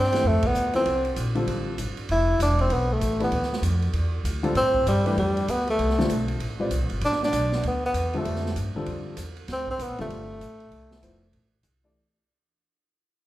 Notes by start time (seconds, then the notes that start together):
Already playing: G2 C4
0.04 snare
0.12 E3 A3 D4 G4 B4, snare, ride
0.24 F2 A3
0.35 C2
0.43 A1 B3, kick, ride
0.55 D2, hi-hat pedal
0.73 F3 B3 C4 E4 A4 C5, ride
0.86 C2, ride
1.05 ride
1.16 A#1, hi-hat pedal, ride
1.35 D3 G3 C4 F4 A4, ride
1.47 A1, ride
1.78 G1, hi-hat pedal, ride
1.97 muted upright bass stroke, ride
2.09 F1 E4, ride
2.39 E1 D4, hi-hat pedal, ride
2.59 C4, ride
2.70 B1 B3, ride
2.92 A3
3.01 A1, hi-hat pedal, ride
3.20 E3 A3 B3 D4 G4 B4, ride
3.31 D2, ride
3.43 snare
3.53 snare
3.62 F2, hi-hat pedal, ride
3.82 ride
3.93 E2, ride
4.24 D2, hi-hat pedal, ride
4.43 D3 G3 C4 F4 A4, ride
4.55 A2 C4, ride
4.74 kick
4.86 G2 G3, hi-hat pedal, ride
5.05 E3 G3 A3 D4 G4 B4, ride
5.16 F2 G3, ride
5.37 ride
5.48 D2 B3, hi-hat pedal, ride
5.67 A3, ride
5.78 C2, ride
5.90 snare
5.98 D3 G3 C4 F4 A4, snare
6.09 B1, hi-hat pedal, ride
6.28 ride
6.40 A1, ride
6.60 G3 C4 F4 B4 D5
6.71 C2, hi-hat pedal, ride
6.81 A1
6.90 G1, ride
7.01 A1 D4, ride
7.12 snare
7.23 D4, snare
7.32 B1, hi-hat pedal, ride
7.52 snare
7.63 D2 B3, ride
7.86 B3
7.94 E2, hi-hat pedal, ride
8.13 D3 G3 C4 F4 A4, ride
8.17 A3
8.25 F2, ride
8.36 snare
8.46 snare
8.56 G2, hi-hat pedal, ride
8.75 D3 G3 C4 F4 A4, muted upright bass stroke
8.86 F2, ride
9.17 E2, hi-hat pedal, ride
9.37 ride
9.48 D2, snare, ride
9.52 C4
9.67 C4, kick
9.78 C2 B3, hi-hat pedal, ride
9.89 A1
9.98 G1 D3 G3 A3 C4 F4 A4, ride
10.09 G1, ride
10.40 A1, hi-hat pedal, ride
10.60 ride
10.71 C2, ride
10.91 snare
11.02 F1 F3 B3 E4 A4 C5, hi-hat pedal, ride
11.33 A1, ride
11.63 C2, hi-hat pedal, ride
11.84 E3 A3 D4 G4 D5